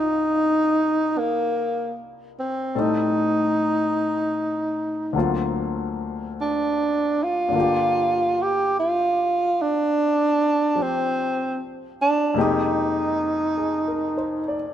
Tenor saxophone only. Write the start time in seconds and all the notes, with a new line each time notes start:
0.00 D#4
1.18 A#3
2.40 C4
2.80 D#4
6.41 D4
7.23 F4
8.43 G4
8.80 F4
9.62 D4
10.82 C4
12.02 D4
12.41 D#4